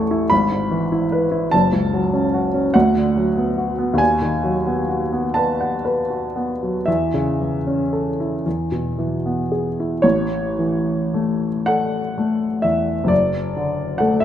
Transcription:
grand piano
Already playing: A1 E2 A3 E4 A4 C#6
0.11 E4
0.30 G#1 B5
0.51 G#2
0.71 E3
0.92 E4
1.12 B4
1.31 E4
1.51 F#1 A5
1.73 C#2
1.93 F#3
2.13 C#4
2.34 F#4
2.54 C#4
2.74 D2 F#5
2.96 D3
3.17 F#3
3.37 B3
3.58 F#4
3.79 B3
3.93 D#2
3.98 G#5
4.22 D#3
4.44 F#3
4.67 B3
4.89 F#4
5.13 B3
5.34 B4 A5
5.61 F#5
5.85 B4
6.10 F#4
6.36 B3
6.63 F#3
6.86 E2 E5
7.14 C#3
7.41 E3
7.67 C#4
7.93 A4
8.20 E4
8.46 E2
8.72 B2
8.98 E3
9.26 B3
9.52 G#4
9.80 E4
10.02 A1 C#5
10.59 E3
11.14 A3
11.66 A4 F#5
12.18 A3
12.62 E2 E5
13.04 F#1
13.08 D5
13.57 D3
13.98 A3 A4 F#5
14.20 E5

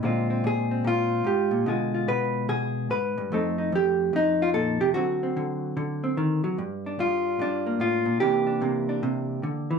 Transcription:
hollow-body jazz guitar
0.03 A#2 D3 G#3 C4 F4
0.30 C4
0.44 A#2 G#4
0.71 C4
0.84 A#2 F4
1.24 G#2 G4
1.51 A#2
1.66 B2 D3 G#3 F4 G#4
1.94 F4
2.08 B2 B4
2.49 B2 G#4
2.90 G#2 B4
3.18 G2
3.32 F2 A3 C4 D#4 A4
3.58 D#4
3.72 F2 G4
4.13 F2 D#4
4.42 F4
4.54 A#2 A4
4.80 C3 G4
4.94 D3 F#3 C4 F#4
5.23 C4
5.37 D3
5.77 D3
6.04 C4
6.17 D#3
6.44 F#3
6.58 G2
6.86 D4
6.99 G2 F4
7.39 G2 D4
7.66 A#3
7.80 A2 F4
8.06 A#2
8.20 C3 E3 A#3 D4 G4
8.47 D4
8.62 C3 A#3
8.89 D4
9.03 C3
9.43 D3
9.71 E3

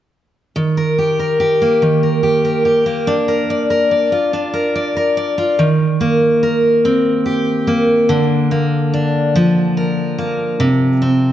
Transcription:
steel-string acoustic guitar
0.56 D#3
0.77 A#4
0.98 G4
1.19 A#4
1.40 G4
1.62 A#3
1.82 D#3
2.03 A#4
2.23 G4
2.45 A#4
2.65 G4
2.86 A#3
3.07 D4
3.28 A#4
3.50 D5
3.70 A#4
3.91 D5
4.12 F4
4.33 D4
4.54 A#4
4.76 D5
4.97 A#4
5.17 D5
5.38 F4
5.59 D#3
6.01 A#3
6.43 A#4
6.85 C4
7.26 G4
7.67 A#3
8.09 D3
8.51 A#3
8.94 D4
9.36 F3
9.77 A#4
10.18 A#3
10.60 C3
11.02 C4

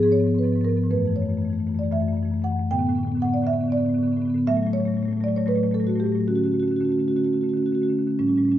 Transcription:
marimba
Already playing: G#2
0.02 G#2 F3 B3 G#4
0.10 F3 B3 C#5
0.15 G#2 F3
0.20 G#2 B3
0.27 F3 B3
0.34 G#2 F3 B3
0.39 B4
0.43 G#2 F3 B3
0.52 G#2 F3 B3
0.61 G#2 F3 B3 A#4
0.69 F3 B3
0.73 G#2 F3
0.77 B3
0.84 G#2 F3
0.90 F#2 E3 A3 B4
0.98 F#2 E3 A3
1.06 E3 A3
1.10 F#2 A3
1.16 F#2 E3 C#5
1.22 E3 A3
1.29 F#2 A3
1.34 E3 A3
1.39 F#2 E3
1.45 F#2 A3
1.50 E3 A3
1.59 F#2 E3 A3
1.67 F#2 E3 A3
1.75 E3 A3
1.79 F#2 D5
1.84 E3 A3
1.92 F#2 E3 A3 E5
2.00 F#2 E3 A3
2.08 E3 A3
2.13 F#2 E3
2.17 A3
2.23 F#2 E3 A3
2.31 F#2 E3 A3
2.39 F#2 E3 A3
2.44 E3 F#5
2.52 F#2
2.56 F#2 E3 A3
2.71 A2 D3 B3 G5
2.79 A2 D3 B3
2.87 A2 D3 B3
2.95 A2 D3 B3
3.03 D3 B3
3.08 A2
3.12 D3 B3
3.17 A2 B3
3.22 A2 D3 F#5
3.29 B3
3.33 A2 D3 D5
3.37 B3
3.42 A2 D3 B3
3.47 D3 E5
3.53 A2 B3
3.59 D3 B3
3.63 A2
3.68 D3 B3 D5
3.72 A2
3.77 A2 D3 B3
3.85 D3 B3
3.89 A2
3.94 A2 D3 B3
4.03 D3 B3
4.07 A2
4.11 D3 B3
4.17 A2 D3
4.22 A2 B3
4.28 D3 B3
4.35 A2 D3 B3
4.47 A2 F#3 A3 E5
4.55 A2 F#3 A3
4.63 F#3 A3
4.67 A2 F#3
4.73 A3 C#5
4.78 A2 F#3
4.85 A2 F#3 A3
4.94 A2 F#3 A3
5.03 F#3 A3
5.08 A2 A3
5.13 F#3
5.17 A2 F#3 A3
5.24 A2 D5
5.28 F#3 A3
5.36 A2 F#3 A3 C#5
5.46 A2 F#3 A3 B4
5.55 A2 F#3 A3
5.63 A2 F#3 A3
5.71 A2 F#3 A3 A4
5.80 F#3 A3
5.85 A2 F#3 F#4
5.90 A3
5.95 A2 F#3 A3
6.00 G4
6.04 A2 F#3 A3
6.12 A2 F#3 A3
6.20 F#3
6.27 D3 A3 C#4 F#4
6.35 D3 A3 C#4 F#4
6.43 D3 A3 C#4 F#4
6.52 D3 A3 C#4 F#4
6.60 D3 A3 C#4 F#4
6.68 A3 C#4 F#4
6.72 D3 C#4
6.76 F#4
6.81 D3 A3 C#4 F#4
6.89 D3 A3 C#4 F#4
6.96 D3 A3 C#4
7.00 C#4 F#4
7.08 D3 A3 F#4
7.12 D3 C#4
7.17 A3 C#4 F#4
7.24 D3 A3 C#4 F#4
7.33 D3 A3 C#4 F#4
7.41 D3 A3 C#4 F#4
7.49 C#4 F#4
7.53 D3 A3 F#4
7.58 C#4
7.62 D3 A3 C#4 F#4
7.72 D3 A3 C#4 F#4
7.80 D3 A3 C#4 F#4
7.88 D3 A3 C#4
7.95 D3 A3 C#4
8.02 C#4
8.07 D3 A3 C#4
8.19 A2 G3 C#4
8.27 A2 G3 C#4
8.36 A2 G3 C#4
8.44 G3 C#4
8.48 A2 G3 C#4

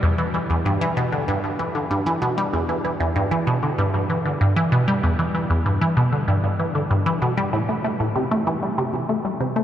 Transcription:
synth arpeggio sound
0.03 E2
0.18 E3
0.34 E3
0.50 E2
0.66 G2
0.81 E3
0.97 B2
1.12 D3
1.28 G2
1.44 G2
1.59 E3
1.75 D3
1.91 G2
2.06 E3
2.22 B2
2.38 G3
2.53 E2
2.69 E3
2.85 E3
3.00 E2
3.16 G2
3.31 E3
3.47 B2
3.63 D3
3.78 G2
3.94 G2
4.10 E3
4.25 D3
4.41 G2
4.56 E3
4.72 B2
4.88 G3
5.03 E2
5.19 E3
5.35 E3
5.50 E2
5.66 G2
5.81 E3
5.97 B2
6.12 D3
6.28 G2
6.44 G2
6.59 E3
6.75 D3
6.91 G2
7.06 E3
7.22 B2
7.37 G3
7.53 A2
7.69 A3
7.84 A3
8.00 A2
8.16 C3
8.31 A3
8.47 E3
8.63 G3
8.78 C3
8.94 C3
9.09 A3
9.25 G3
9.40 C3
9.56 A3

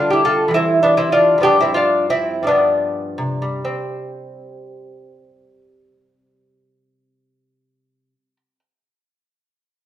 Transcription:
lute
Already playing: D3 G3 D4 F4
0.10 E4 G4
0.25 F4 A4
0.48 E3 G3
0.54 C4 E4
0.83 B3 D4
0.97 C4 E4
1.12 D4 F4
1.38 G2 F3 B3
1.43 D4 G4
1.60 C4 E4
1.74 D4 F4
2.10 C4 E4
2.43 G2 F3
2.47 B3 D4
3.18 C3
3.42 G3
3.65 C4

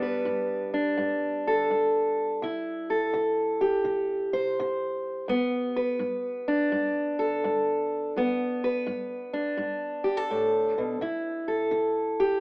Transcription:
steel-string acoustic guitar
Already playing: G2 G3 B3 D4
0.02 B4
0.25 G2
0.74 D4
0.98 G2
1.47 A4
1.70 G2
2.42 C3 E4
2.90 A4
3.14 C3
3.61 G4
3.84 C3
4.33 C5
4.60 C3
5.28 G2 B3
5.76 B4
5.99 G2
6.48 D4
6.72 G2
7.19 A4
7.44 G2
8.16 G2 B3
8.64 B4
8.87 G2
9.33 D4
9.57 G2
10.04 G4
10.17 A4
10.31 A2
10.78 B2
11.01 C3 E4
11.48 A4
11.71 C3
12.20 G4

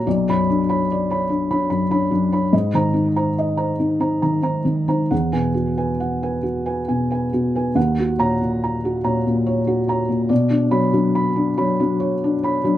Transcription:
felt piano
0.07 B1 D5
0.29 F#2 C#5 B5
0.50 D4
0.69 C#5 B5
0.92 D5
1.10 C#5 B5
1.29 D4
1.51 D4 C#5 B5
1.70 F#2 B5
1.91 D4 C#5 B5
2.10 F#2 D4
2.32 D4 C#5 B5
2.53 G#2 D#5
2.74 D#3 C5 A#5
2.94 D#4
3.16 C5 A#5
3.39 D#5
3.57 C5 A#5
3.80 D#4
4.00 D#4 C5 A#5
4.22 D#3 A#5
4.42 D#4 C5 A#5
4.65 D#3 D#4
4.88 D#4 C5 A#5
5.11 E2 F#5
5.32 B2 B4 G#5
5.54 F#4
5.77 B4 G#5
6.00 F#5
6.23 B4 G#5
6.43 F#4
6.66 B4 G#5
6.88 B2 G#5
7.11 B4 G#5
7.33 B2 F#4
7.55 B4 G#5
7.75 D#2 F#5
7.99 F#4
8.19 A#2 C#5 A#5
8.41 A#2
8.64 A#5
8.85 F#4
9.04 A#2 C#5 A#5
9.27 A#2
9.46 C#5
9.67 F#4
9.88 C#5 A#5
10.09 A#2
10.29 B2 D5
10.50 D4
10.71 F#3 C#5 B5
10.93 F#3 D4
11.15 B5
11.36 D4
11.57 F#3 C#5 B5
11.80 F#3 D4
12.00 C#5
12.24 D4
12.43 C#5 B5
12.64 F#3 D4

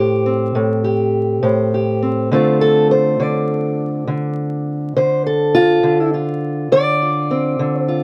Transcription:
steel-string acoustic guitar
Already playing: A2 C4 G4 C5
0.26 C4
0.55 A2
0.84 G4
1.43 A2 C5
1.74 G4
2.03 C4
2.31 D3 A3 C4 F4 C5
2.61 A4
2.91 C5
3.20 D3 D5
4.07 D3
4.96 D3 C5
5.26 A4
5.55 F4
5.83 D3
6.14 F4
6.72 D3 D5
7.02 F4
7.31 C4
7.59 D3
7.81 C5
7.88 F4

